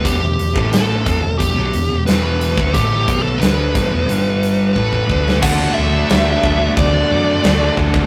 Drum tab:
CC |----------------|----------------|x---x---x---x---|
HH |x-x-x-x-x-x-x-x-|x-x-x-x-x-x-----|----------------|
SD |----o-------o---|----o----------o|----o-------o---|
BD |o--o--o-o------o|o-o---o-----ooo-|o-----o-o-----oo|